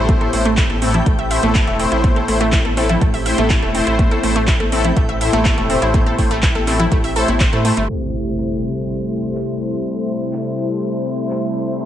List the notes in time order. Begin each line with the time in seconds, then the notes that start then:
Already playing: A1 A2 A3 E4 G4 C5 G5
0.09 A3 C4 E4, kick, closed hi-hat, high conga
0.21 A4, closed hi-hat
0.33 A1 A2 A3 E4 C5, open hi-hat
0.45 A3, closed hi-hat
0.57 E4, kick, clap, closed hi-hat
0.70 A1 A4, closed hi-hat, high conga
0.82 A2 A3 C4 E4 A4, open hi-hat
0.94 E4, closed hi-hat, low conga
1.06 A1 A3, kick, closed hi-hat
1.19 E5, closed hi-hat
1.31 A2 A3 E4 C5 E5, open hi-hat
1.43 A1 A2 A3 E4 A4, closed hi-hat, high conga
1.55 E4, kick, clap, closed hi-hat
1.67 E1 A3, closed hi-hat
1.79 A2 A3 C4 E4 C5, open hi-hat
1.92 A1 E4, closed hi-hat
2.04 A3, kick, closed hi-hat, high conga
2.16 A4, closed hi-hat
2.28 A1 A2 A3 E4 C5, open hi-hat
2.41 A3, closed hi-hat
2.52 E4, kick, clap, closed hi-hat
2.65 A1 A4, closed hi-hat, high conga
2.77 A2 A3 C4 E4 A4, clap, open hi-hat
2.89 E4, closed hi-hat, low conga
3.01 A1 A3, kick, closed hi-hat
3.14 E5, open hi-hat
3.26 A2 A3 E4 C5 E5, open hi-hat
3.38 A1 A2 A3 E4 A4, closed hi-hat, high conga
3.50 E4, kick, clap, closed hi-hat
3.62 E1 A3, closed hi-hat
3.75 A2 A3 C4 E4 C5, open hi-hat
3.87 A1 E4, closed hi-hat
3.99 A3, kick, closed hi-hat, high conga
4.11 A4, closed hi-hat
4.23 A1 A2 A3 E4 C5, open hi-hat
4.36 A3, closed hi-hat
4.47 E4, kick, clap, closed hi-hat
4.60 A1 A4, closed hi-hat, high conga
4.72 A2 A3 C4 E4 A4, open hi-hat
4.84 E4, closed hi-hat, low conga
4.97 A1 A3, kick, closed hi-hat
5.09 E5, closed hi-hat
5.21 A2 A3 E4 C5 E5, open hi-hat
5.33 A1 A2 A3 E4 A4, closed hi-hat, high conga
5.45 E4, kick, clap, closed hi-hat
5.58 E1 A3, closed hi-hat
5.70 A2 A3 C4 E4 C5, open hi-hat
5.82 A1 E4, closed hi-hat
5.94 A3, kick, closed hi-hat, high conga
6.06 A4, closed hi-hat
6.18 A1 A2 A3 E4 C5, kick, open hi-hat
6.31 A3, closed hi-hat
6.43 E4, kick, clap, closed hi-hat
6.55 A1 A4, closed hi-hat, high conga
6.67 A2 A3 C4 E4 A4, clap, open hi-hat
6.79 E4, closed hi-hat, low conga
6.92 A1 A3, kick, closed hi-hat
7.04 E5, open hi-hat
7.16 A2 A3 E4 A4 C5, open hi-hat
7.28 A1 E4, closed hi-hat, high conga
7.40 C5, kick, clap, closed hi-hat
7.53 A2 A3 E4 C5, closed hi-hat
7.65 C3 A3 E4 C5, open hi-hat
7.77 G1 A3, closed hi-hat
7.89 C3 G3 A3 E4 C5 C6, closed hi-hat, impact
8.38 clap
8.62 closed hi-hat
9.11 closed hi-hat
9.35 clap
9.60 closed hi-hat
10.09 closed hi-hat
10.21 closed hi-hat
10.33 clap
10.57 clap, closed hi-hat
10.70 closed hi-hat
10.82 closed hi-hat
11.06 closed hi-hat
11.19 closed hi-hat
11.30 clap
11.55 closed hi-hat
11.67 closed hi-hat
11.79 C3 A3 E4 C5, closed hi-hat